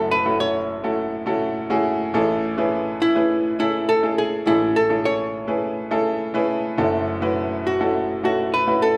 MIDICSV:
0, 0, Header, 1, 3, 480
1, 0, Start_track
1, 0, Key_signature, 3, "major"
1, 0, Tempo, 580833
1, 1768, Time_signature, 4, 2, 24, 8
1, 7414, End_track
2, 0, Start_track
2, 0, Title_t, "Hollow-body jazz guitar"
2, 0, Program_c, 0, 26
2, 0, Note_on_c, 0, 69, 92
2, 91, Note_off_c, 0, 69, 0
2, 94, Note_on_c, 0, 71, 97
2, 329, Note_off_c, 0, 71, 0
2, 332, Note_on_c, 0, 73, 97
2, 1497, Note_off_c, 0, 73, 0
2, 2493, Note_on_c, 0, 64, 84
2, 2963, Note_off_c, 0, 64, 0
2, 2973, Note_on_c, 0, 64, 86
2, 3212, Note_on_c, 0, 69, 94
2, 3218, Note_off_c, 0, 64, 0
2, 3454, Note_off_c, 0, 69, 0
2, 3457, Note_on_c, 0, 68, 89
2, 3695, Note_on_c, 0, 64, 91
2, 3699, Note_off_c, 0, 68, 0
2, 3935, Note_on_c, 0, 69, 98
2, 3938, Note_off_c, 0, 64, 0
2, 4177, Note_on_c, 0, 73, 98
2, 4179, Note_off_c, 0, 69, 0
2, 5339, Note_off_c, 0, 73, 0
2, 6335, Note_on_c, 0, 66, 83
2, 6808, Note_off_c, 0, 66, 0
2, 6818, Note_on_c, 0, 66, 84
2, 7054, Note_on_c, 0, 71, 97
2, 7060, Note_off_c, 0, 66, 0
2, 7291, Note_on_c, 0, 69, 91
2, 7298, Note_off_c, 0, 71, 0
2, 7414, Note_off_c, 0, 69, 0
2, 7414, End_track
3, 0, Start_track
3, 0, Title_t, "Upright piano"
3, 0, Program_c, 1, 0
3, 0, Control_c, 1, 64, 127
3, 0, Note_on_c, 1, 30, 65
3, 0, Note_on_c, 1, 42, 68
3, 0, Note_on_c, 1, 57, 77
3, 0, Note_on_c, 1, 61, 71
3, 0, Note_on_c, 1, 64, 66
3, 0, Note_on_c, 1, 66, 69
3, 0, Note_on_c, 1, 69, 82
3, 173, Note_off_c, 1, 57, 0
3, 174, Note_off_c, 1, 61, 0
3, 174, Note_off_c, 1, 64, 0
3, 175, Note_off_c, 1, 66, 0
3, 177, Note_off_c, 1, 69, 0
3, 207, Note_on_c, 1, 57, 71
3, 208, Note_on_c, 1, 61, 68
3, 211, Note_on_c, 1, 64, 66
3, 213, Note_on_c, 1, 66, 67
3, 213, Note_on_c, 1, 69, 81
3, 641, Note_off_c, 1, 57, 0
3, 642, Note_off_c, 1, 61, 0
3, 643, Note_off_c, 1, 64, 0
3, 644, Note_off_c, 1, 66, 0
3, 644, Note_off_c, 1, 69, 0
3, 690, Note_on_c, 1, 57, 74
3, 691, Note_on_c, 1, 61, 66
3, 691, Note_on_c, 1, 64, 67
3, 693, Note_on_c, 1, 66, 69
3, 695, Note_on_c, 1, 69, 83
3, 1014, Note_off_c, 1, 57, 0
3, 1014, Note_off_c, 1, 61, 0
3, 1015, Note_off_c, 1, 64, 0
3, 1016, Note_off_c, 1, 66, 0
3, 1017, Note_off_c, 1, 69, 0
3, 1039, Note_on_c, 1, 57, 86
3, 1041, Note_on_c, 1, 61, 80
3, 1047, Note_on_c, 1, 64, 75
3, 1047, Note_on_c, 1, 69, 93
3, 1048, Note_on_c, 1, 66, 76
3, 1369, Note_off_c, 1, 57, 0
3, 1370, Note_off_c, 1, 61, 0
3, 1372, Note_off_c, 1, 64, 0
3, 1373, Note_off_c, 1, 66, 0
3, 1373, Note_off_c, 1, 69, 0
3, 1403, Note_on_c, 1, 57, 91
3, 1404, Note_on_c, 1, 64, 86
3, 1405, Note_on_c, 1, 61, 81
3, 1408, Note_on_c, 1, 68, 101
3, 1409, Note_on_c, 1, 66, 88
3, 1731, Note_off_c, 1, 57, 0
3, 1731, Note_off_c, 1, 64, 0
3, 1732, Note_off_c, 1, 61, 0
3, 1733, Note_off_c, 1, 68, 0
3, 1734, Note_off_c, 1, 66, 0
3, 1737, Note_off_c, 1, 30, 0
3, 1737, Note_off_c, 1, 42, 0
3, 1766, Note_on_c, 1, 57, 96
3, 1768, Note_on_c, 1, 64, 86
3, 1769, Note_on_c, 1, 61, 85
3, 1770, Note_on_c, 1, 33, 81
3, 1770, Note_on_c, 1, 45, 79
3, 1770, Note_on_c, 1, 68, 82
3, 1773, Note_on_c, 1, 69, 101
3, 1779, Control_c, 1, 64, 0
3, 1909, Control_c, 1, 64, 127
3, 2092, Note_off_c, 1, 57, 0
3, 2093, Note_off_c, 1, 64, 0
3, 2094, Note_off_c, 1, 61, 0
3, 2094, Note_off_c, 1, 68, 0
3, 2096, Note_off_c, 1, 69, 0
3, 2126, Note_on_c, 1, 57, 82
3, 2129, Note_on_c, 1, 61, 81
3, 2130, Note_on_c, 1, 64, 79
3, 2130, Note_on_c, 1, 68, 80
3, 2132, Note_on_c, 1, 71, 91
3, 2561, Note_off_c, 1, 57, 0
3, 2562, Note_off_c, 1, 61, 0
3, 2563, Note_off_c, 1, 64, 0
3, 2563, Note_off_c, 1, 68, 0
3, 2564, Note_off_c, 1, 71, 0
3, 2605, Note_on_c, 1, 57, 77
3, 2606, Note_on_c, 1, 61, 72
3, 2608, Note_on_c, 1, 64, 70
3, 2609, Note_on_c, 1, 68, 67
3, 2611, Note_on_c, 1, 71, 85
3, 2932, Note_off_c, 1, 57, 0
3, 2932, Note_off_c, 1, 61, 0
3, 2933, Note_off_c, 1, 64, 0
3, 2934, Note_off_c, 1, 68, 0
3, 2935, Note_off_c, 1, 71, 0
3, 2967, Note_on_c, 1, 57, 73
3, 2969, Note_on_c, 1, 61, 69
3, 2971, Note_on_c, 1, 64, 71
3, 2972, Note_on_c, 1, 68, 66
3, 2973, Note_on_c, 1, 69, 86
3, 3293, Note_off_c, 1, 57, 0
3, 3293, Note_off_c, 1, 61, 0
3, 3295, Note_off_c, 1, 64, 0
3, 3295, Note_off_c, 1, 68, 0
3, 3296, Note_off_c, 1, 69, 0
3, 3328, Note_on_c, 1, 57, 77
3, 3328, Note_on_c, 1, 61, 66
3, 3329, Note_on_c, 1, 64, 70
3, 3331, Note_on_c, 1, 68, 71
3, 3332, Note_on_c, 1, 69, 81
3, 3653, Note_off_c, 1, 57, 0
3, 3653, Note_off_c, 1, 61, 0
3, 3654, Note_off_c, 1, 64, 0
3, 3655, Note_off_c, 1, 68, 0
3, 3655, Note_off_c, 1, 69, 0
3, 3656, Note_off_c, 1, 33, 0
3, 3656, Note_off_c, 1, 45, 0
3, 3686, Note_on_c, 1, 61, 69
3, 3687, Note_on_c, 1, 57, 78
3, 3689, Note_on_c, 1, 45, 67
3, 3689, Note_on_c, 1, 64, 70
3, 3690, Note_on_c, 1, 33, 65
3, 3691, Note_on_c, 1, 68, 72
3, 3692, Note_on_c, 1, 69, 86
3, 4012, Note_off_c, 1, 57, 0
3, 4012, Note_off_c, 1, 61, 0
3, 4014, Note_off_c, 1, 64, 0
3, 4015, Note_off_c, 1, 68, 0
3, 4015, Note_off_c, 1, 69, 0
3, 4044, Note_on_c, 1, 57, 70
3, 4044, Note_on_c, 1, 61, 69
3, 4048, Note_on_c, 1, 64, 68
3, 4048, Note_on_c, 1, 68, 66
3, 4051, Note_on_c, 1, 69, 83
3, 4479, Note_off_c, 1, 61, 0
3, 4480, Note_off_c, 1, 57, 0
3, 4481, Note_off_c, 1, 68, 0
3, 4482, Note_off_c, 1, 64, 0
3, 4483, Note_off_c, 1, 69, 0
3, 4521, Note_on_c, 1, 57, 71
3, 4524, Note_on_c, 1, 61, 69
3, 4526, Note_on_c, 1, 64, 68
3, 4527, Note_on_c, 1, 68, 70
3, 4528, Note_on_c, 1, 71, 83
3, 4850, Note_off_c, 1, 57, 0
3, 4851, Note_off_c, 1, 61, 0
3, 4852, Note_off_c, 1, 64, 0
3, 4852, Note_off_c, 1, 68, 0
3, 4853, Note_off_c, 1, 71, 0
3, 4882, Note_on_c, 1, 57, 87
3, 4882, Note_on_c, 1, 64, 77
3, 4883, Note_on_c, 1, 61, 78
3, 4885, Note_on_c, 1, 68, 74
3, 4886, Note_on_c, 1, 69, 96
3, 5210, Note_off_c, 1, 57, 0
3, 5210, Note_off_c, 1, 64, 0
3, 5211, Note_off_c, 1, 61, 0
3, 5212, Note_off_c, 1, 68, 0
3, 5212, Note_off_c, 1, 69, 0
3, 5238, Note_on_c, 1, 57, 90
3, 5239, Note_on_c, 1, 61, 83
3, 5242, Note_on_c, 1, 64, 84
3, 5244, Note_on_c, 1, 68, 81
3, 5245, Note_on_c, 1, 71, 98
3, 5568, Note_off_c, 1, 57, 0
3, 5569, Note_off_c, 1, 61, 0
3, 5570, Note_off_c, 1, 64, 0
3, 5571, Note_off_c, 1, 68, 0
3, 5572, Note_off_c, 1, 71, 0
3, 5575, Note_off_c, 1, 45, 0
3, 5576, Note_off_c, 1, 33, 0
3, 5598, Note_on_c, 1, 57, 85
3, 5600, Note_on_c, 1, 42, 79
3, 5600, Note_on_c, 1, 61, 79
3, 5601, Note_on_c, 1, 64, 79
3, 5602, Note_on_c, 1, 30, 80
3, 5605, Note_on_c, 1, 66, 83
3, 5605, Note_on_c, 1, 69, 97
3, 5619, Control_c, 1, 64, 0
3, 5784, Control_c, 1, 64, 127
3, 5928, Note_off_c, 1, 57, 0
3, 5929, Note_off_c, 1, 61, 0
3, 5930, Note_off_c, 1, 64, 0
3, 5931, Note_off_c, 1, 66, 0
3, 5931, Note_off_c, 1, 69, 0
3, 5959, Note_on_c, 1, 57, 83
3, 5960, Note_on_c, 1, 61, 80
3, 5964, Note_on_c, 1, 64, 77
3, 5965, Note_on_c, 1, 66, 80
3, 5967, Note_on_c, 1, 71, 93
3, 6397, Note_off_c, 1, 57, 0
3, 6397, Note_off_c, 1, 61, 0
3, 6400, Note_off_c, 1, 64, 0
3, 6400, Note_off_c, 1, 66, 0
3, 6401, Note_off_c, 1, 71, 0
3, 6445, Note_on_c, 1, 57, 74
3, 6447, Note_on_c, 1, 61, 71
3, 6449, Note_on_c, 1, 64, 71
3, 6450, Note_on_c, 1, 66, 68
3, 6452, Note_on_c, 1, 69, 86
3, 6772, Note_off_c, 1, 57, 0
3, 6773, Note_off_c, 1, 61, 0
3, 6773, Note_off_c, 1, 64, 0
3, 6774, Note_off_c, 1, 66, 0
3, 6775, Note_off_c, 1, 69, 0
3, 6803, Note_on_c, 1, 57, 76
3, 6804, Note_on_c, 1, 64, 66
3, 6806, Note_on_c, 1, 61, 66
3, 6808, Note_on_c, 1, 66, 67
3, 6810, Note_on_c, 1, 69, 82
3, 7130, Note_off_c, 1, 57, 0
3, 7131, Note_off_c, 1, 64, 0
3, 7132, Note_off_c, 1, 61, 0
3, 7133, Note_off_c, 1, 66, 0
3, 7134, Note_off_c, 1, 69, 0
3, 7161, Note_on_c, 1, 57, 79
3, 7167, Note_on_c, 1, 61, 70
3, 7167, Note_on_c, 1, 64, 71
3, 7169, Note_on_c, 1, 66, 72
3, 7169, Note_on_c, 1, 71, 88
3, 7414, Note_off_c, 1, 30, 0
3, 7414, Note_off_c, 1, 42, 0
3, 7414, Note_off_c, 1, 57, 0
3, 7414, Note_off_c, 1, 61, 0
3, 7414, Note_off_c, 1, 64, 0
3, 7414, Note_off_c, 1, 66, 0
3, 7414, Note_off_c, 1, 71, 0
3, 7414, End_track
0, 0, End_of_file